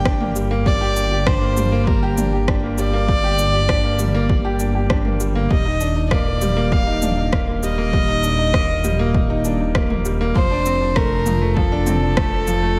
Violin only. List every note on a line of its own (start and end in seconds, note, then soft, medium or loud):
0.00 0.32 G5 loud
0.67 1.28 D5 loud
1.27 1.89 C5 loud
1.87 2.48 A#4 medium
2.78 4.56 D5 loud
5.51 6.07 D#5 loud
6.11 6.74 D5 loud
6.72 7.33 F5 loud
7.63 9.41 D#5 loud
10.36 10.98 C5 loud
10.97 11.56 A#4 loud
11.57 12.79 A4 loud